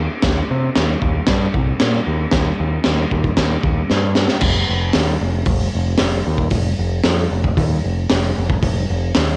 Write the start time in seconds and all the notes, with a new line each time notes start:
0.22 D#2, kick, snare, crash
0.51 C3
0.76 D#2, snare, crash
1.02 D#2, kick
1.27 G2, kick, snare, crash
1.54 C2, kick
1.80 A#2, snare, crash
2.07 D#2
2.31 D#2, kick, snare, crash
2.60 D#2
2.84 D#2, snare, crash
3.11 D#2, kick
3.24 kick
3.37 D#2, kick, snare, crash
3.63 D#2, kick
3.90 G2, snare
4.15 snare
4.28 snare
4.41 F1, kick, crash
4.69 F1
4.93 D#2, snare, open hi-hat
5.21 F1
5.46 F1, kick, open hi-hat
5.75 F1
5.98 F1, snare, open hi-hat
6.27 D#2
6.38 kick
6.50 F1, kick, open hi-hat
6.79 F1
7.04 F2, snare, open hi-hat
7.31 F1
7.44 kick
7.57 D#2, kick, open hi-hat
7.84 F1
8.09 F1, snare, open hi-hat
8.38 F1
8.50 kick
8.63 F1, kick, open hi-hat
8.90 F1
9.15 D#2, snare, open hi-hat